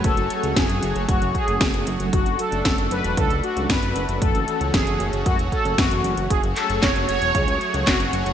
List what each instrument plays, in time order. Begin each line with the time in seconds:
Already playing: analog polysynth F#3 A3 C#4 G#4, analog synth pad F#3 A3 F#4 C#5 G#5
0.04 analog synth bass F#1, analog polysynth A4, kick, closed hi-hat
0.17 analog synth bass F#1, closed hi-hat
0.30 analog polysynth F#3 A3 C#4 G#4, closed hi-hat
0.43 analog synth bass C#2, closed hi-hat
0.56 analog synth bass F#1, analog polysynth G#4, kick, snare, closed hi-hat
0.69 analog synth bass F#1, analog polysynth F#3 A3 C#4 G#4, closed hi-hat
0.83 analog synth bass F#1, closed hi-hat
0.96 analog synth bass F#1, closed hi-hat
1.09 analog synth bass F#1, analog polysynth F#3 A3 C#4 F#4 G#4, kick, closed hi-hat
1.22 analog synth bass F#1, closed hi-hat
1.35 analog polysynth G#4, kick, closed hi-hat
1.48 analog synth bass F#1, analog polysynth F#3 A3 C#4 G#4, closed hi-hat
1.61 analog synth bass F#1, kick, snare, closed hi-hat
1.74 analog synth bass F#1, closed hi-hat
1.87 analog synth bass F#1, closed hi-hat
2.00 analog synth bass F#1, analog polysynth F#3 A3 D4 A4, closed hi-hat
2.13 analog synth bass F#1, analog synth pad A3 D4, analog polysynth F#4, kick, closed hi-hat
2.26 analog synth bass F#1, closed hi-hat
2.39 analog polysynth F#3 A3 D4 A4, closed hi-hat
2.52 analog synth bass F#1, closed hi-hat
2.65 analog synth bass F#1, kick, snare, closed hi-hat
2.78 analog synth bass F#1, analog polysynth F#3 A3 D4 A4, closed hi-hat
2.91 analog synth bass F#1, analog polysynth B4, closed hi-hat
3.04 analog synth bass E1, closed hi-hat
3.17 analog synth bass C#2, analog polysynth F#3 A3 D4 A4, kick, closed hi-hat
3.30 analog synth bass C#2, closed hi-hat
3.43 analog polysynth F#4, closed hi-hat
3.56 analog synth bass C#2, analog polysynth F#3 A3 D4 A4, closed hi-hat
3.69 analog synth bass F#1, analog polysynth B4, kick, snare, closed hi-hat
3.83 analog synth bass F#1, closed hi-hat
3.95 analog synth bass F#1, closed hi-hat
4.09 analog synth bass F#1, analog polysynth E3 A3 C#4 F#4, closed hi-hat
4.21 analog synth bass F#1, analog synth pad C#4 F#4, analog polysynth A4, kick, closed hi-hat
4.35 analog synth bass F#1, closed hi-hat
4.48 analog polysynth E3 A3 C#4 F#4, closed hi-hat
4.61 analog synth bass C#2, closed hi-hat
4.73 analog synth bass F#1, analog polysynth G#4, kick, snare, closed hi-hat
4.87 analog synth bass F#1, analog polysynth E3 A3 C#4 F#4, closed hi-hat
5.00 analog synth bass F#1, closed hi-hat
5.13 analog synth bass F#1, closed hi-hat
5.26 analog synth bass F#2, analog polysynth E3 A3 C#4 F#4, kick, closed hi-hat
5.39 analog synth bass E1, closed hi-hat
5.52 analog polysynth A4, kick, closed hi-hat
5.65 analog synth bass F#1, closed hi-hat
5.78 analog synth bass F#1, analog polysynth E3 A3 C#4 F#4, kick, snare, closed hi-hat
5.91 analog synth bass F#1, analog polysynth E3 A3 C#4 F#4, closed hi-hat
6.04 analog synth bass F#1, closed hi-hat
6.17 analog synth bass F#1, closed hi-hat
6.30 analog synth bass F#1, analog synth pad F#3 A3 F#4 G#4 C#5, analog polysynth G#4, kick, closed hi-hat
6.43 analog synth bass F#1, closed hi-hat
6.56 analog polysynth F#3 A3 C#4 G#4 A4, clap, closed hi-hat
6.70 analog synth bass F#1, closed hi-hat
6.82 analog synth bass F#1, analog polysynth C#5, kick, snare, clap, closed hi-hat
6.95 analog synth bass F#1, analog polysynth F#3 A3 C#4 G#4, closed hi-hat
7.08 analog synth bass F#1, analog polysynth C#5, closed hi-hat
7.22 analog synth bass E1, closed hi-hat
7.35 analog synth bass C#2, analog polysynth F#3 A3 C#4 G#4, kick, closed hi-hat
7.48 analog synth bass C#2, closed hi-hat
7.61 closed hi-hat
7.74 analog synth bass C#2, analog polysynth F#3 A3 C#4 G#4, closed hi-hat
7.86 analog synth bass F#1, analog polysynth F#4, kick, snare, clap, closed hi-hat
8.00 analog synth bass F#1, closed hi-hat
8.13 analog synth bass F#1, closed hi-hat
8.26 analog synth bass F#1, analog polysynth F#3 A3 C#4 G#4, closed hi-hat